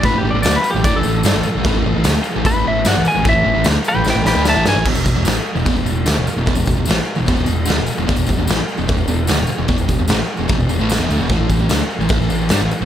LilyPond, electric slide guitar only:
\new Staff \with { instrumentName = "Electric slide guitar" } { \time 4/4 \key a \major \tempo 4 = 149 \tuplet 3/2 { b'8 g'8 d''8 d''8 b'8 g'8 d''8 a'4~ } a'4~ | a'4. r8 b'8 e''8 fis''8 gis''8 | e''4 r8 <b' g''>8 <b' g''>8 <b' g''>8 <e'' a''>8 gis''8 | r1 |
r1 | r1 | r1 | r1 | }